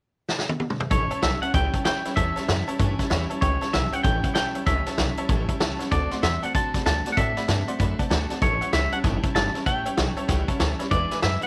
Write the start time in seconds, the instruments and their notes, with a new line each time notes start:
0.29 snare
0.39 snare
0.49 high tom
0.60 high tom
0.70 mid tom
0.80 floor tom
0.90 upright bass A1, steel-string acoustic guitar A2 E3 G3 C#4 E4, honky-tonk piano C#5 E5 A5, clean electric guitar C#5, kick, closed hi-hat
1.10 steel-string acoustic guitar G3 C#4 E4, honky-tonk piano C#5 E5 A5, muted upright bass stroke, closed hi-hat
1.22 upright bass B1, steel-string acoustic guitar E3 G3 C#4 E4, honky-tonk piano C#5 E5 A5, clean electric guitar E5, snare, closed hi-hat
1.41 steel-string acoustic guitar G3 C#4 E4, honky-tonk piano C#5 E5 A5, clean electric guitar F#5, muted upright bass stroke, closed hi-hat
1.54 upright bass C#2, steel-string acoustic guitar A2 E3 G3 C#4 E4, honky-tonk piano C#5 E5 B5, clean electric guitar G5, kick, closed hi-hat
1.73 steel-string acoustic guitar G3 C#4 E4, honky-tonk piano C#5 E5 A5, kick, closed hi-hat
1.84 upright bass D#2, steel-string acoustic guitar E3 G3 C#4 E4, honky-tonk piano C#5 E5 B5, clean electric guitar G5, snare, closed hi-hat
2.04 steel-string acoustic guitar G3 C#4 E4, honky-tonk piano C#5 E5 B5, muted upright bass stroke, snare, closed hi-hat
2.16 upright bass E2, steel-string acoustic guitar A2 E3 G3 C#4 E4, honky-tonk piano C#5 E5 A5, clean electric guitar E5, kick, closed hi-hat
2.35 steel-string acoustic guitar G3 C#4 E4, honky-tonk piano C#5 E5 A5, muted upright bass stroke, snare, closed hi-hat
2.47 upright bass F#2, steel-string acoustic guitar E3 G3 C#4 E4, honky-tonk piano C#5 E5 A5, snare, closed hi-hat
2.67 steel-string acoustic guitar G3 C#4 E4, honky-tonk piano C#5 E5 A5, muted upright bass stroke, closed hi-hat
2.79 upright bass G2, steel-string acoustic guitar A2 E3 G3 C#4 E4, honky-tonk piano C#5 E5 A5, kick, closed hi-hat
2.99 steel-string acoustic guitar G3 C#4 E4, honky-tonk piano C#5 E5 A5, muted upright bass stroke, kick, snare, closed hi-hat
3.10 upright bass E2, steel-string acoustic guitar E3 G3 C#4 E4, honky-tonk piano C#5 E5 B5, snare, closed hi-hat
3.29 steel-string acoustic guitar G3 C#4 E4, honky-tonk piano C#5 E5 A5, closed hi-hat
3.41 upright bass C#2, steel-string acoustic guitar A2 E3 G3 C#4 E4, clean electric guitar C#5, honky-tonk piano C#5 E5 G5, kick, closed hi-hat
3.60 steel-string acoustic guitar G3 C#4 E4, honky-tonk piano C#5 E5 A5, snare, closed hi-hat
3.72 upright bass B1, steel-string acoustic guitar E3 G3 C#4 E4, honky-tonk piano C#5 E5 A5, clean electric guitar E5, snare, closed hi-hat
3.92 steel-string acoustic guitar G3 C#4 E4, honky-tonk piano C#5 E5 G5, clean electric guitar F#5, muted upright bass stroke, closed hi-hat
4.03 upright bass A1, steel-string acoustic guitar A2 E3 G3 C#4 E4, honky-tonk piano C#5 E5 A5, clean electric guitar G5, kick, closed hi-hat
4.23 steel-string acoustic guitar G3 C#4 E4, honky-tonk piano C#5 E5 F#5, muted upright bass stroke, kick, closed hi-hat
4.34 upright bass B1, steel-string acoustic guitar E3 G3, honky-tonk piano C#5 E5 A5, clean electric guitar G5, snare, closed hi-hat
4.54 steel-string acoustic guitar G3 C#4 E4, honky-tonk piano C#5 E5 A5, muted upright bass stroke, closed hi-hat
4.66 upright bass C#2, steel-string acoustic guitar A2 E3 G3 C#4 E4, honky-tonk piano C#5 E5 A5, clean electric guitar E5, kick, closed hi-hat
4.86 steel-string acoustic guitar G3 C#4 E4, honky-tonk piano C#5 E5 A5, muted upright bass stroke, snare, closed hi-hat
4.97 upright bass B1, steel-string acoustic guitar E3 G3 C#4 E4, honky-tonk piano C#5 E5 A5, snare, closed hi-hat
5.17 steel-string acoustic guitar G3 C#4 E4, honky-tonk piano C#5 E5 A5, muted upright bass stroke, closed hi-hat
5.29 upright bass A1, steel-string acoustic guitar A2 E3 G3 C#4 E4, honky-tonk piano C#5 E5 A5, kick, closed hi-hat
5.48 steel-string acoustic guitar G3 C#4 E4, honky-tonk piano C#5 E5 A5, kick, closed hi-hat
5.60 upright bass C#2, steel-string acoustic guitar E3 G3 C#4 E4, honky-tonk piano C#5 E5 A5, snare, closed hi-hat
5.79 steel-string acoustic guitar G3 C#4 E4, honky-tonk piano C#5 E5 F#5 A5, snare, closed hi-hat
5.91 upright bass D2, steel-string acoustic guitar D3 A3 C4 F#4, clean electric guitar D5, honky-tonk piano D5 F#5 A5, kick, closed hi-hat
6.11 steel-string acoustic guitar A3 C4 F#4, honky-tonk piano D5 F#5 C6, muted upright bass stroke, snare, closed hi-hat
6.22 upright bass E2, steel-string acoustic guitar D3 A3 F#4, honky-tonk piano D5 F#5 C6, clean electric guitar E5, snare, closed hi-hat
6.42 steel-string acoustic guitar A3 C4 F#4, honky-tonk piano D5 F#5 A5, clean electric guitar F#5, muted upright bass stroke, closed hi-hat
6.54 upright bass F#2, steel-string acoustic guitar D3 A3 C4 F#4, honky-tonk piano D5 F#5 C6, clean electric guitar A5, kick, closed hi-hat
6.74 steel-string acoustic guitar A3 C4 F#4, honky-tonk piano D5 F#5 B5, kick, snare, closed hi-hat
6.85 upright bass D2, steel-string acoustic guitar D3 A3 C4 F#4, honky-tonk piano D5 F#5 A5, clean electric guitar A5, snare, closed hi-hat
7.05 steel-string acoustic guitar A3 C4 F#4, honky-tonk piano D5 F#5 A5, muted upright bass stroke, snare, closed hi-hat
7.12 clean electric guitar F#5
7.17 upright bass A2, steel-string acoustic guitar D3 A3 C4 F#4, honky-tonk piano D5 F#5 A5, clean electric guitar E5, kick, closed hi-hat
7.35 steel-string acoustic guitar A3 C4 F#4, honky-tonk piano D5 F#5 B5, muted upright bass stroke, snare, closed hi-hat
7.47 upright bass G2, steel-string acoustic guitar D3 C4 F#4, honky-tonk piano D5 F#5 A5, snare, closed hi-hat
7.67 steel-string acoustic guitar A3 C4 F#4, honky-tonk piano D5 F#5 C6, muted upright bass stroke, closed hi-hat
7.79 upright bass F#2, steel-string acoustic guitar D3 A3 C4 F#4, honky-tonk piano D5 F#5 B5, kick, closed hi-hat
7.98 steel-string acoustic guitar A3 C4 F#4, honky-tonk piano D5 F#5 A5, muted upright bass stroke, kick, closed hi-hat
8.09 upright bass D2, steel-string acoustic guitar D3 A3 C4 F#4, honky-tonk piano D5 F#5 A5, snare, closed hi-hat
8.29 steel-string acoustic guitar A3 C4 F#4, honky-tonk piano D5 F#5 A5, muted upright bass stroke, snare, closed hi-hat
8.41 upright bass A1, steel-string acoustic guitar A2 E3 G3 C#4 E4, honky-tonk piano C#5 E5 A5, clean electric guitar C#5, kick, closed hi-hat
8.61 steel-string acoustic guitar G3 C#4 E4, honky-tonk piano C#5 E5 F#5, muted upright bass stroke, closed hi-hat
8.72 upright bass C#2, steel-string acoustic guitar E3 G3 C#4 E4, honky-tonk piano C#5 E5 B5, clean electric guitar E5, snare, closed hi-hat
8.92 steel-string acoustic guitar G3 C#4 E4, honky-tonk piano C#5 E5 A5, clean electric guitar F#5, closed hi-hat
9.03 upright bass F#1, steel-string acoustic guitar A2 E3 G3 C#4 E4, honky-tonk piano C#5 E5 A5, clean electric guitar G5, kick, snare, closed hi-hat
9.23 steel-string acoustic guitar G3 C#4 E4, honky-tonk piano C#5 E5 A5, kick, closed hi-hat
9.35 upright bass G1, steel-string acoustic guitar E3 G3 C#4, honky-tonk piano C#5 E5 A5, clean electric guitar A5, snare, closed hi-hat
9.54 steel-string acoustic guitar G3 C#4 E4, honky-tonk piano C#5 E5 A5, muted upright bass stroke, snare, closed hi-hat
9.66 upright bass A1, steel-string acoustic guitar A2 E3 G3 C#4 E4, honky-tonk piano C#5 E5 A5, clean electric guitar G5, kick, closed hi-hat
9.86 steel-string acoustic guitar G3 C#4 E4, honky-tonk piano C#5 E5 G5, muted upright bass stroke, closed hi-hat
9.97 upright bass B1, steel-string acoustic guitar E3 G3 C#4 E4, honky-tonk piano C#5 E5 A5, snare, closed hi-hat
10.17 steel-string acoustic guitar G3 C#4 E4, honky-tonk piano C#5 E5 A5, muted upright bass stroke, closed hi-hat
10.28 upright bass C#2, steel-string acoustic guitar A2 E3 G3 C#4 E4, honky-tonk piano C#5 E5 F#5 G5, kick, snare, closed hi-hat
10.48 steel-string acoustic guitar G3 C#4 E4, honky-tonk piano C#5 E5 A5, kick, closed hi-hat
10.60 upright bass D2, steel-string acoustic guitar E3 G3 C#4 E4, honky-tonk piano C#5 E5 A5, snare, closed hi-hat
10.79 steel-string acoustic guitar G3 C#4 E4, honky-tonk piano C#5 D5 E5 B5, muted upright bass stroke, snare, closed hi-hat
10.91 upright bass E2, steel-string acoustic guitar E2 B2 E3 G#3 D4 E4, honky-tonk piano B4 E5 G#5, clean electric guitar D5, kick, closed hi-hat
11.11 steel-string acoustic guitar E3 G#3 D4 E4, honky-tonk piano B4 E5 G#5, muted upright bass stroke, snare, closed hi-hat
11.22 upright bass F#2, steel-string acoustic guitar E3 G#3 D4 E4, honky-tonk piano B4 E5 B5, clean electric guitar E5, snare, closed hi-hat
11.41 steel-string acoustic guitar D4 E4, honky-tonk piano B4 E5 B5, clean electric guitar F#5, closed hi-hat